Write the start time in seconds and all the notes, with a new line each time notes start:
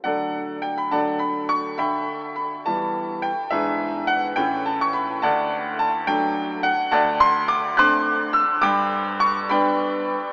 0.04 D3 F#3 A3 D4 A4 D5 F#5
0.62 G5
0.78 B5
0.91 D3 F#3 A3 D4 D5 F#5 A5
1.19 B5
1.49 C#6
1.78 D3 E5 G5 B5
2.36 B5
2.66 E3 G3 B3 A5
3.22 G5
3.50 G#2 E3 B3 D4 G#4 B4 E5
4.07 F#5
4.36 A2 E3 A3 C#4 G5
4.66 A5
4.81 C#6
4.93 B5
5.22 D2 D5 F#5 A5
5.79 A5
6.07 F#3 A3 D4 G5
6.63 F#5
6.91 D2 D5 F#5 A5
7.20 C6
7.48 D6
7.77 A3 C4 D4 C6 D6 F#6
8.33 E6
8.62 G2 G5 B5 D6
9.20 C#6
9.49 G3 B3 D4 D5 G5 B5